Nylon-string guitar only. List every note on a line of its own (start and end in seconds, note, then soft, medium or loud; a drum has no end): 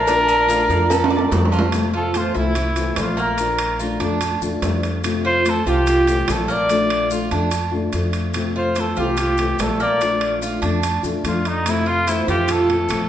0.07 0.48 F3 medium
0.07 0.49 D4 medium
0.07 0.49 F4 medium
0.49 0.69 F3 soft
0.49 0.69 A3 medium
0.49 0.69 D4 medium
0.49 0.68 F4 medium
0.69 0.90 A3 medium
0.69 0.90 D4 medium
0.69 0.89 F4 medium
0.91 muted nylon-string guitar stroke medium
1.12 1.31 A3 medium
1.12 1.32 D4 medium
1.12 1.31 F4 medium
1.32 1.72 F3 soft
1.32 1.72 A3 medium
1.32 1.73 D4 medium
1.32 1.73 F4 medium
1.72 2.13 C3 medium
1.72 2.13 A3 medium
1.72 2.14 C4 medium
1.72 2.14 F4 medium
2.13 2.34 E3 medium
2.13 2.34 A3 medium
2.13 2.34 C4 medium
2.13 2.33 F4 medium
2.34 2.54 E3 medium
2.34 2.55 A3 medium
2.34 2.55 C4 medium
2.34 2.55 F4 medium
2.55 muted nylon-string guitar stroke medium
2.76 2.97 E3 medium
2.76 2.96 A3 medium
2.76 2.96 C4 medium
2.76 2.96 F4 medium
2.97 3.38 A3 medium
2.97 3.38 C4 medium
2.97 3.38 F4 medium
3.38 3.79 F3 medium
3.38 3.80 D4 medium
3.38 3.80 F4 medium
3.80 4.00 F3 medium
3.80 4.00 A3 medium
3.80 4.00 D4 medium
3.80 3.98 F4 medium
4.00 4.20 A3 medium
4.00 4.21 D4 medium
4.00 4.20 F4 medium
4.21 muted nylon-string guitar stroke medium
4.42 4.62 A3 medium
4.42 4.62 D4 medium
4.42 4.62 F4 medium
4.63 5.03 F3 medium
4.63 5.03 A3 medium
4.63 5.04 D4 medium
4.63 5.04 F4 medium
5.03 5.44 C3 medium
5.03 5.44 A3 medium
5.03 5.45 C4 medium
5.03 5.45 F4 medium
5.44 5.65 E3 medium
5.44 5.65 A3 medium
5.44 5.64 C4 medium
5.44 5.64 F4 medium
5.65 5.87 E3 medium
5.65 5.86 A3 medium
5.65 5.86 C4 medium
5.65 5.85 F4 medium
5.87 muted nylon-string guitar stroke medium
6.07 6.28 E3 medium
6.07 6.27 A3 medium
6.07 6.28 C4 medium
6.07 6.27 F4 medium
6.28 6.69 A3 medium
6.28 6.69 C4 medium
6.28 6.69 F4 medium
6.69 7.08 F3 medium
6.69 7.10 A3 medium
6.69 7.11 D4 medium
6.69 7.11 F4 medium
7.10 7.30 F3 medium
7.10 7.31 A3 medium
7.10 7.31 D4 medium
7.10 7.30 F4 medium
7.31 7.51 A3 medium
7.31 7.51 D4 medium
7.31 7.51 F4 medium
7.51 muted nylon-string guitar stroke medium
7.72 7.93 A3 medium
7.72 7.93 D4 medium
7.72 7.92 F4 medium
7.93 8.34 F3 medium
7.93 8.34 A3 soft
7.93 8.35 D4 medium
7.93 8.35 F4 medium
8.34 8.75 C3 medium
8.34 8.75 A3 medium
8.34 8.76 C4 medium
8.34 8.76 F4 medium
8.76 8.96 E3 soft
8.76 8.96 A3 medium
8.76 8.96 C4 medium
8.76 8.96 F4 medium
8.97 9.17 E3 medium
8.97 9.17 A3 medium
8.97 9.17 C4 medium
8.97 9.17 F4 medium
9.18 muted nylon-string guitar stroke medium
9.37 9.59 E3 medium
9.37 9.59 A3 medium
9.37 9.58 C4 medium
9.37 9.58 F4 medium
9.60 9.99 A3 medium
9.60 10.01 C4 medium
9.60 10.01 F4 soft
10.00 10.39 F3 medium
10.00 10.40 A3 medium
10.00 10.41 D4 medium
10.00 10.42 F4 medium
10.41 10.61 F3 soft
10.41 10.61 A3 medium
10.41 10.62 D4 medium
10.41 10.61 F4 medium
10.62 10.81 A3 medium
10.62 10.81 D4 medium
10.62 10.82 F4 medium
10.82 muted nylon-string guitar stroke medium
11.03 11.23 A3 medium
11.03 11.24 D4 medium
11.03 11.23 F4 medium
11.24 11.65 F3 medium
11.24 11.65 A3 soft
11.24 11.65 D4 medium
11.24 11.66 F4 medium
11.66 12.06 C3 medium
11.66 12.06 A3 medium
11.66 12.07 C4 medium
11.66 12.07 F4 medium
12.07 12.27 E3 medium
12.07 12.27 A3 medium
12.07 12.26 C4 medium
12.07 12.25 F4 medium
12.27 12.47 E3 medium
12.27 12.47 A3 medium
12.27 12.47 C4 medium
12.27 12.47 F4 medium
12.48 muted nylon-string guitar stroke medium
12.68 12.90 E3 medium
12.68 12.89 A3 medium
12.68 12.89 C4 medium
12.68 12.89 F4 medium
12.90 13.09 A3 medium
12.90 13.09 C4 medium
12.90 13.09 F4 medium